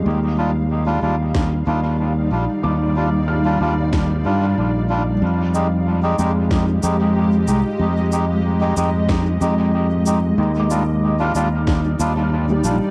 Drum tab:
SH |--------|--------|-x-x-x-x|-x-x-x-x|
SD |----o---|----o---|----o---|----o---|
BD |----o---|----o---|----o---|----o---|

SH |-x-x-x-x|
SD |----o---|
BD |----o---|